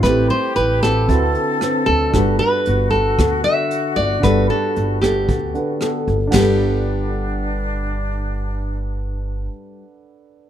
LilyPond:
<<
  \new Staff \with { instrumentName = "Nylon-string guitar" } { \time 4/4 \key g \major \tempo 4 = 114 b'8 c''8 b'8 a'2 a'8~ | a'8 b'4 a'4 e''4 d''8 | b'8 a'4 g'2 r8 | g'1~ |
g'1 | }
  \new Staff \with { instrumentName = "Grand piano" } { \time 4/4 \key g \major <c' e' g' b'>2 <c' e' fis' b'>2 | <d' fis' a' b'>1 | <d' a' b' fis''>2~ <d' a' b' fis''>8 <d' a' b' fis''>4. | <d' a' b' fis''>1~ |
<d' a' b' fis''>1 | }
  \new Staff \with { instrumentName = "Flute section" } { \time 4/4 \key g \major g'2 a'2 | fis'1~ | fis'2.~ fis'8 r8 | d'1~ |
d'1 | }
  \new Staff \with { instrumentName = "Nylon-string guitar" } { \time 4/4 \key g \major << { <c' g' b'>4 r8 <c' fis' b'>4. <c' fis' b'>4 | <b fis' a'>4. r8 <b fis' a'>2 | <b fis' a'>4. <b a'>4. <b fis' a'>8 r8 | <g b a'>1~ |
<g b a'>1 | } \\ { a2 d2 | g2 d2 | g2 d2 | r1 |
r1 | } >> }
  \new Staff \with { instrumentName = "Upright bass" } { \clef bass \time 4/4 \key g \major a,,8 r8 a,,4 d,8 r4 d,8 | g,,8 r8 g,,4 d,8 r4 g,,8 | g,,8 r8 g,,4 d,8 r4 g,,8 | g,,1~ |
g,,1 | }
  \new DrumStaff \with { instrumentName = "Drums" } \drummode { \time 4/4 <hh bd ss>8 hh8 hh8 <hh bd ss>8 <hh bd>8 hh8 <hh ss>8 <hh bd>8 | <hh bd ss>8 hh8 hh8 <hh bd>8 <hh bd ss>8 hh8 hh8 <hh bd>8 | <hh bd ss>8 hh8 hh8 <hh bd ss>8 <hh bd>8 hh8 <hh ss>8 <hh bd>8 | <cymc bd sn>4 r4 r4 r4 |
r4 r4 r4 r4 | }
>>